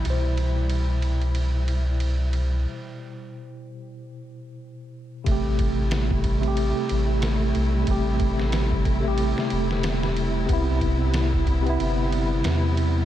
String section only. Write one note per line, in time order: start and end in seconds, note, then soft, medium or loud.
0.00 2.61 E3 medium
0.00 2.61 G3 medium
0.00 2.61 E4 medium
5.27 13.05 C3 medium
5.27 10.45 G3 medium
5.27 10.45 A3 medium
5.27 13.05 E4 medium
10.49 13.05 G3 medium
10.49 13.05 B3 medium